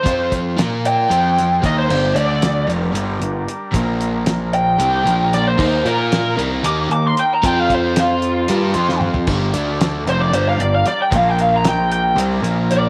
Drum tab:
CC |--------------|x-------------|--------------|x-------------|
HH |x-x-x-x-x-x-x-|--x-x-x-x-x-x-|x-x-x-x-x-x-x-|--x-x-x-x-x-x-|
SD |----o-----o---|----o---------|----o-------o-|--o-o---------|
T2 |--------------|--------------|--------------|--------------|
FT |--------------|--------------|--------------|--------------|
BD |o-o---------o-|--------------|o-------------|o-------------|

CC |--------------|x-------------|--------------|
HH |x-x-x-x-x-x---|--x-x-x-x-x-x-|x-x-x-x-x-x-x-|
SD |----o------o--|----o-------o-|----o-------o-|
T2 |------------o-|--------------|--------------|
FT |-------------o|--------------|--------------|
BD |o-o-----------|o-------------|o-------------|